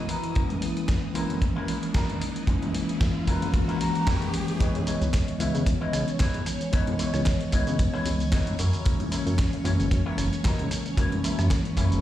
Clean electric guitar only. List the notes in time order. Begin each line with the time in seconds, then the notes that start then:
0.08 E4 F#4 A#4
0.50 muted clean electric guitar stroke
0.62 muted clean electric guitar stroke
1.15 E4 F#4 A#4
1.56 E4 F#4 A#4
1.95 E4 F#4 A#4
2.36 muted clean electric guitar stroke
2.48 muted clean electric guitar stroke
2.63 muted clean electric guitar stroke
2.74 muted clean electric guitar stroke
3.28 E4 F#4 A#4
3.68 E4 F#4 A#4
3.81 A#5
4.07 E4 F#4 A#4 C#5
4.48 muted clean electric guitar stroke
4.60 D#4 E4 B4 C#5
4.87 D#4 E4 B4 C#5
5.28 muted clean electric guitar stroke
5.40 D#4 E4 B4 E5
5.81 D#4 E4 B4 D#5
6.19 D#4 E4 B4 C#5
6.61 muted clean electric guitar stroke
6.72 D#4 E4 B4 C#5
6.99 D#4 E4 B4 C#5
7.41 muted clean electric guitar stroke
7.52 D#4 E4 B4 C#5
7.93 D#4 E4 B4 C#5
8.32 D#4 E4 B4 C#5
8.59 E4 F#4 A#4 C#5
9.11 E4 F#4 A#4 C#5
9.53 muted clean electric guitar stroke
9.64 E4 F#4 A#4 C#5
10.06 E4 F#4 A#4 C#5
10.44 E4 F#4 A#4 D#5
10.86 muted clean electric guitar stroke
10.98 E4 F#4 A#4 C#5
11.24 E4 F#4 A#4 E5
11.66 muted clean electric guitar stroke
11.77 E4 F#4 A#4 C#5